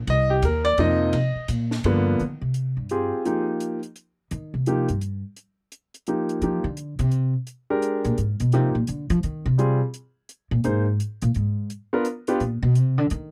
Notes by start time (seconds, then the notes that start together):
0.07 C2 D#5, kick, ride
0.30 G4
0.42 D#2 A#4, kick, hi-hat pedal, ride
0.65 D5, ride
0.78 F2 C3 F3 A#3 D#4 D#5, kick, ride
1.13 C3, kick, ride
1.35 muted upright bass stroke
1.48 A#2, kick, hi-hat pedal, ride
1.71 snare
1.84 G2 D3 F3 A#3 B3, kick, ride
2.19 D#3, closed hi-hat
2.41 C3
2.54 closed hi-hat
2.77 G2
2.89 C4 F4 G4 G#4, closed hi-hat
3.25 F3 A#3 D#4 G4, closed hi-hat
3.60 closed hi-hat
3.83 closed hi-hat
3.96 closed hi-hat
4.31 D#3, closed hi-hat
4.54 C3
4.66 F3 A#3 D#4 G4, closed hi-hat
4.88 G2, closed hi-hat
5.01 closed hi-hat
5.36 closed hi-hat
5.72 closed hi-hat
5.94 closed hi-hat
6.07 F3 A#3 D#4 G4, closed hi-hat
6.29 closed hi-hat
6.42 F3 A#3 D#4 G4, closed hi-hat
6.64 D3
6.77 closed hi-hat
6.99 C3, closed hi-hat
7.11 closed hi-hat
7.47 closed hi-hat
7.70 G#3 D4 G4 A#4
7.82 closed hi-hat
8.04 A#2, closed hi-hat
8.18 G#2, closed hi-hat
8.40 B2, closed hi-hat
8.52 C3 F3 A#3 D#4 G4, closed hi-hat
8.75 A#2
8.87 D3, closed hi-hat
9.10 F3, closed hi-hat
9.23 D#3, closed hi-hat
9.46 C3
9.58 G3 C4 F4 G#4, closed hi-hat
9.94 closed hi-hat
10.29 closed hi-hat
10.51 A#2
10.64 G#2 A#3 D#4 G#4 C5, closed hi-hat
11.00 closed hi-hat
11.22 A#2, closed hi-hat
11.34 G#2, closed hi-hat
11.70 closed hi-hat
11.93 B3 D4 F4 A#4
12.05 closed hi-hat
12.27 B3 D4 F4 G4, closed hi-hat
12.40 A#2, closed hi-hat
12.63 B2
12.75 C3, closed hi-hat
12.98 D3
13.10 D#3, closed hi-hat